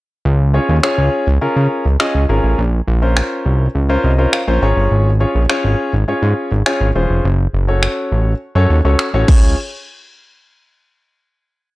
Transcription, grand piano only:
0.54 0.75 C#4 medium
0.54 0.75 F4 medium
0.54 0.75 G#4 medium
0.54 0.75 C#5 medium
0.83 1.25 C#4 medium
0.83 1.25 F4 medium
0.83 1.26 G#4 medium
0.83 1.26 C#5 loud
1.41 1.84 C#4 medium
1.41 1.84 F4 medium
1.41 1.84 G#4 medium
1.41 1.84 A#4 medium
2.00 2.21 C#4 medium
2.00 2.21 F4 medium
2.00 2.21 G#4 medium
2.00 2.21 D#5 medium
2.29 2.58 C#4 medium
2.29 2.58 F4 medium
2.29 2.58 G#4 medium
2.29 2.58 A#4 medium
3.02 3.65 C#4 medium
3.02 3.65 F4 medium
3.02 3.65 A#4 medium
3.02 3.65 C5 medium
3.89 4.10 C#4 medium
3.89 4.10 F4 medium
3.89 4.10 A#4 medium
3.89 4.11 C5 loud
4.04 4.31 D#5 medium
4.18 4.39 C#4 medium
4.18 4.39 F4 medium
4.18 4.40 A#4 medium
4.18 4.40 C5 medium
4.33 4.60 F5 medium
4.48 4.61 C#4 medium
4.48 4.61 F4 medium
4.48 4.62 A#4 medium
4.48 4.62 C5 loud
4.62 5.09 C#4 medium
4.62 5.09 F4 medium
4.62 5.09 G#4 medium
4.62 5.09 C#5 loud
4.62 4.89 A#5 medium
5.20 5.41 C#4 medium
5.20 5.41 F4 medium
5.20 5.42 G#4 medium
5.20 5.42 C#5 medium
5.49 5.92 C#4 loud
5.49 5.92 F4 medium
5.49 5.92 G#4 medium
5.49 5.92 C#5 loud
6.08 6.50 C#4 medium
6.08 6.50 F4 medium
6.08 6.50 G#4 medium
6.08 6.50 C#5 medium
6.66 6.87 C#4 medium
6.66 6.87 F4 medium
6.66 6.87 G#4 medium
6.66 6.87 C#5 medium
6.95 7.24 C#4 medium
6.95 7.24 F4 medium
6.95 7.24 G#4 medium
6.95 7.25 C5 medium
7.68 8.31 C#4 medium
7.68 8.31 F#4 medium
7.68 8.31 A4 medium
7.68 8.31 C#5 medium
8.55 8.76 C#4 medium
8.55 8.77 F#4 medium
8.55 8.77 A4 medium
8.55 8.77 C#5 loud
8.85 9.06 C#4 medium
8.85 9.06 F#4 medium
8.85 9.06 A4 medium
8.85 9.06 C#5 medium
9.14 9.27 C#4 medium
9.14 9.28 F#4 medium
9.14 9.28 A4 medium
9.14 9.27 C#5 loud
9.29 9.55 C#4 medium
9.29 9.55 F4 medium
9.29 9.55 G#4 medium

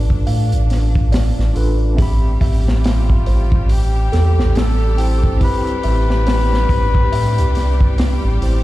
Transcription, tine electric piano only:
0.00 1.53 D4 medium
0.00 1.55 F4 medium
0.00 1.56 A4 medium
0.00 1.53 B4 medium
0.00 2.00 D5 medium
1.53 1.93 D4 loud
1.53 1.94 F4 loud
1.53 1.94 A4 medium
1.53 1.95 B4 loud
1.95 4.92 C4 medium
1.95 4.93 E5 medium
1.99 4.95 G4 medium
1.99 4.96 B5 medium
4.96 5.36 C4 medium
4.96 5.37 E4 medium
4.96 5.37 G4 medium
4.96 5.38 C5 medium
5.37 8.35 C4 medium
5.37 8.36 E4 medium
5.42 8.38 G4 medium
5.42 8.39 B5 medium
8.39 8.63 C4 medium
8.39 8.63 E4 medium
8.39 8.63 G4 medium
8.39 8.63 C5 medium

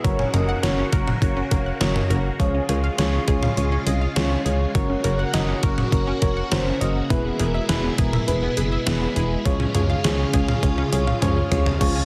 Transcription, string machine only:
0.04 2.37 C#3 medium
0.04 2.37 A#3 medium
0.04 2.37 F#4 medium
2.40 7.06 C#3 medium
2.40 4.73 G#3 medium
2.40 4.73 F4 medium
4.75 7.08 A#3 medium
4.75 7.08 F#4 medium
7.10 9.43 B2 medium
7.10 11.77 G#3 medium
7.10 9.43 E4 medium
9.45 11.79 C#3 medium
9.45 11.78 F4 medium
11.81 12.05 C#3 medium
11.81 12.05 G#3 medium
11.81 12.05 F4 medium

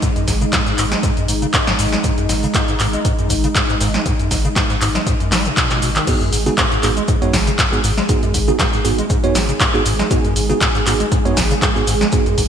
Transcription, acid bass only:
0.02 0.10 G#2 loud
0.16 0.26 F#2 loud
0.28 0.32 G#2 medium
0.41 0.45 C#3 loud
0.53 0.60 G#2 medium
0.67 0.73 G#2 medium
0.78 0.85 G#2 loud
0.92 0.98 G#3 medium
1.03 1.11 G#2 loud
1.17 1.26 F#2 loud
1.28 1.33 G#2 medium
1.42 1.46 C#3 loud
1.54 1.61 G#2 medium
1.67 1.74 G#2 medium
1.79 1.86 G#2 loud
1.93 1.99 G#3 medium
2.04 2.12 G#2 loud
2.18 2.27 F#2 loud
2.29 2.34 G#2 medium
2.43 2.47 C#3 loud
2.55 2.62 G#2 medium
2.68 2.75 G#2 medium
2.80 2.87 G#2 loud
2.93 3.00 G#3 medium
3.05 3.12 G#2 loud
3.19 3.28 F#2 loud
3.30 3.35 G#2 medium
3.44 3.48 C#3 loud
3.55 3.63 G#2 medium
3.69 3.75 G#2 medium
3.81 3.88 G#2 loud
3.94 4.01 G#3 medium
4.06 4.13 G#2 loud
4.19 4.29 F#2 loud
4.31 4.35 G#2 medium
4.45 4.48 C#3 loud
4.56 4.64 G#2 medium
4.70 4.76 G#2 medium
4.81 4.89 G#2 loud
4.95 5.01 G#3 medium
5.06 5.14 G#2 loud
5.20 5.33 F#2 loud
5.32 5.47 G#3 medium
5.45 5.52 B2 loud
5.57 5.68 B2 medium
5.71 5.80 B2 medium
5.82 5.90 B2 medium
5.96 6.05 D#3 medium
6.07 6.15 G#2 loud
6.21 6.31 F#2 loud
6.33 6.37 G#2 medium
6.46 6.50 C#3 loud
6.58 6.65 G#2 medium
6.72 6.78 G#2 medium
6.83 6.91 G#2 loud
6.97 7.03 G#3 medium
7.08 7.16 G#2 loud
7.22 7.31 F#2 loud
7.33 7.38 G#2 medium
7.47 7.51 C#3 loud
7.59 7.66 G#2 medium
7.72 7.79 G#2 medium
7.84 7.91 G#2 loud
7.98 8.04 G#3 medium
8.09 8.17 G#2 loud
8.23 8.32 F#2 loud
8.34 8.39 G#2 medium
8.48 8.52 C#3 loud
8.60 8.67 G#2 medium
8.73 8.80 G#2 medium
8.85 8.92 G#2 loud
8.98 9.05 G#3 medium
9.10 9.17 G#2 loud
9.24 9.33 F#2 loud
9.35 9.40 G#2 medium
9.49 9.53 C#3 loud
9.60 9.68 G#2 medium
9.74 9.80 G#2 medium
9.85 9.93 G#2 loud
9.99 10.06 G#3 medium
10.11 10.18 G#2 loud
10.24 10.34 F#2 loud
10.36 10.40 G#2 medium
10.50 10.53 C#3 loud
10.61 10.69 G#2 medium
10.75 10.81 G#2 medium
10.86 10.94 G#2 loud
11.00 11.06 G#3 medium
11.12 11.19 G#2 loud
11.25 11.35 F#2 loud
11.37 11.41 G#2 medium
11.51 11.54 C#3 loud
11.62 11.70 G#2 medium
11.76 11.82 G#2 medium
11.87 11.95 G#2 loud
12.01 12.07 G#3 medium
12.12 12.20 G#2 loud
12.26 12.36 F#2 loud
12.38 12.42 G#2 medium

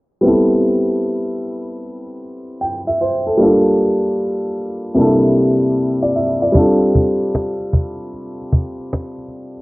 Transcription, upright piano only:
0.21 3.34 G3 medium
0.21 3.35 B3 medium
0.21 3.36 C4 medium
0.26 3.37 E4 medium
0.26 2.59 A4 medium
2.61 2.85 G5 medium
2.87 3.00 E5 medium
3.01 3.25 C5 medium
3.27 3.42 A4 medium
3.37 4.93 G3 medium
3.37 4.94 A#3 medium
3.37 4.95 D4 medium
3.42 4.96 F4 medium
3.42 4.96 A4 medium
4.94 6.51 C3 medium
4.94 6.50 G3 medium
4.94 6.52 A#3 medium
4.94 6.52 D4 medium
5.00 6.53 E4 medium
5.00 6.54 A4 medium
6.02 6.15 D5 medium
6.16 6.40 E5 medium
6.42 6.79 D5 medium
6.52 9.62 G3 medium
6.52 9.62 C4 medium
6.52 9.62 D4 medium
6.57 9.62 F4 medium
6.57 9.62 A4 medium

